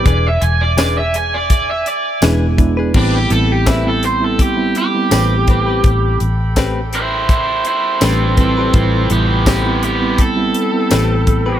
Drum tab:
CC |--------|x-------|--------|--------|
HH |xxxxxxxx|-xxxxxxx|xxxxxxxx|xxxxxxxx|
TB |--x---x-|--x---x-|--x---x-|--x---x-|
SD |--o---o-|--o---o-|--o---o-|--o---o-|
BD |o---o--o|o-o-o--o|o-o-o--o|o-o-o--o|